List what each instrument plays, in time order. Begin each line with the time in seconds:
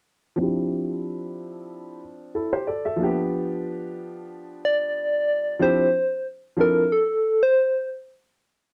0.36 upright piano F3 C4 D4
0.41 upright piano E4 G4
2.35 upright piano E4 A4
2.53 upright piano G4 C5
2.67 upright piano A4 D5
2.85 upright piano A4 E5
2.96 upright piano F3 A#3
3.01 upright piano D4 G4
3.05 upright piano B3
4.65 soft synth lead D5
5.59 upright piano F3 C4 D4 E4 G4, soft synth lead C5
6.57 upright piano F3 C4 D4 E4 A4
6.61 soft synth lead A#4
6.92 soft synth lead A4
7.43 soft synth lead C5